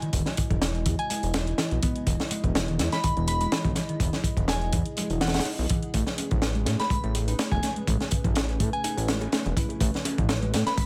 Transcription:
Already playing: G#3 E4 F#4 D#5
0.02 D#3, closed hi-hat
0.13 E1 D#3, kick, closed hi-hat
0.26 snare, closed hi-hat, high conga
0.37 kick, closed hi-hat
0.50 E1, kick, closed hi-hat, high conga
0.62 snare, closed hi-hat
0.75 closed hi-hat
0.86 E2 E3, kick, closed hi-hat
0.99 G#5, closed hi-hat
1.10 G#3 G#5, closed hi-hat
1.23 E1, closed hi-hat
1.34 D#4, snare, closed hi-hat
1.47 closed hi-hat
1.58 E3, snare, closed hi-hat
1.71 B1, closed hi-hat, high conga
1.83 B3, kick, closed hi-hat
1.96 closed hi-hat
2.07 E1 E3 G#4, kick, closed hi-hat
2.20 snare, closed hi-hat, high conga
2.31 G#3, closed hi-hat
2.44 E1, kick, closed hi-hat, high conga
2.55 snare, closed hi-hat
2.68 D#3, closed hi-hat
2.79 E2 E3, snare, closed hi-hat
2.92 E3 B5, snare, closed hi-hat
3.04 E1 D#3 B5, kick, closed hi-hat
3.17 E1 E3, closed hi-hat
3.28 B5, closed hi-hat
3.40 G#3 B5, closed hi-hat
3.52 E3, snare, closed hi-hat
3.65 B1, kick, closed hi-hat, high conga
3.75 E3, snare, closed hi-hat
3.89 D#3, closed hi-hat
4.00 E1 D#3, kick, closed hi-hat
4.13 snare, closed hi-hat, high conga
4.24 kick, closed hi-hat
4.37 E1, kick, closed hi-hat, high conga
4.48 G#5, snare, closed hi-hat
4.62 closed hi-hat
4.73 E2 E3, kick, closed hi-hat
4.86 closed hi-hat
4.97 G#3, closed hi-hat, high conga
5.10 E1, closed hi-hat
5.21 E3 F#5, snare, closed hi-hat
5.27 snare, closed hi-hat
5.34 F#5, snare, closed hi-hat
5.39 snare, closed hi-hat
5.45 D#4, closed hi-hat, open hi-hat
5.58 B1, closed hi-hat, high conga
5.70 E3, kick, closed hi-hat
5.83 closed hi-hat
5.94 A1 A3 C#4 B4, kick, closed hi-hat
6.07 snare, closed hi-hat, high conga
6.18 C#4, closed hi-hat
6.31 A1, kick, closed hi-hat, high bongo, high conga
6.42 snare, closed hi-hat
6.55 G#3, closed hi-hat
6.66 A2 A3, snare, closed hi-hat, high bongo
6.79 A3 B5, snare, closed hi-hat
6.90 A1 G#3 B5, kick, closed hi-hat
7.04 A1 A3, closed hi-hat
7.15 closed hi-hat, high bongo
7.28 D#4, closed hi-hat
7.39 A3, snare, closed hi-hat
7.52 E1 G#5, kick, closed hi-hat, high bongo, high conga
7.63 A3, snare, closed hi-hat
7.76 G#3, closed hi-hat
7.87 A1 G#3, kick, closed hi-hat
8.01 snare, closed hi-hat, high bongo, high conga
8.11 kick, closed hi-hat
8.24 A1, kick, closed hi-hat, high conga
8.35 snare, closed hi-hat, high bongo
8.49 closed hi-hat
8.60 A2 A3, kick, closed hi-hat
8.73 G#5, closed hi-hat
8.84 D#4 G#5, closed hi-hat, high bongo
8.97 A1, closed hi-hat
9.08 G#3, snare, closed hi-hat
9.21 closed hi-hat, high bongo
9.32 A3, snare, closed hi-hat
9.46 E1, closed hi-hat, high conga
9.57 E4, kick, closed hi-hat
9.69 closed hi-hat, high bongo
9.80 A1 A3 A4, kick, closed hi-hat
9.94 snare, closed hi-hat, high conga
10.05 C#4, closed hi-hat, high bongo
10.18 A1, kick, closed hi-hat, high conga
10.29 snare, closed hi-hat
10.42 G#3, closed hi-hat
10.54 A2 A3, snare, closed hi-hat, high bongo
10.66 A3 B5, snare, closed hi-hat
10.78 A1 G#3 B5, kick, closed hi-hat

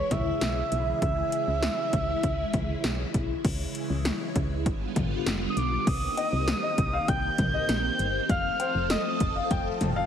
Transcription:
Already playing: C#3 E3 G#3 E4 C#5
0.11 C#2 E5, kick, closed hi-hat, mid tom
0.41 B1, snare, closed hi-hat
0.72 B1, closed hi-hat
1.02 C#2 E5, kick, closed hi-hat
1.32 closed hi-hat
1.48 C#2
1.63 snare, closed hi-hat
1.93 C#2, kick, closed hi-hat
2.23 C#2, kick, closed hi-hat
2.53 C#2, kick, closed hi-hat, mid tom
2.84 B1, snare, closed hi-hat
3.14 B1, kick, closed hi-hat
3.45 C#2 C#3 E3 G#3 E4, kick, closed hi-hat, crash
3.75 closed hi-hat
3.90 C#2
4.05 snare, closed hi-hat
4.36 C#2, kick, closed hi-hat
4.66 G1 D3 G3 B3 F4, kick, closed hi-hat
4.96 G1, kick, closed hi-hat, mid tom
5.26 F1, snare, closed hi-hat
5.50 D#6
5.57 B1 D6, closed hi-hat
5.87 C2 D#3 A#3 C4 G4 D#6, kick, closed hi-hat, crash
6.17 D#5, closed hi-hat, cowbell
6.33 C2
6.48 snare, closed hi-hat
6.63 D#5
6.78 C2, kick, closed hi-hat
6.93 F5
7.08 C2 G5 G6, kick, closed hi-hat
7.38 C2, kick, closed hi-hat, mid tom
7.54 D#5
7.69 A#1, snare, closed hi-hat
7.99 G1, closed hi-hat
8.29 F1 F3 A3 A4 F5 F6, kick, closed hi-hat
8.60 C5, closed hi-hat, cowbell
8.75 F1
8.90 D#5 D#6, snare, closed hi-hat
9.20 F1, kick, closed hi-hat
9.36 F5
9.51 F1 G5, kick, closed hi-hat
9.81 F1, closed hi-hat, mid tom
9.96 F5

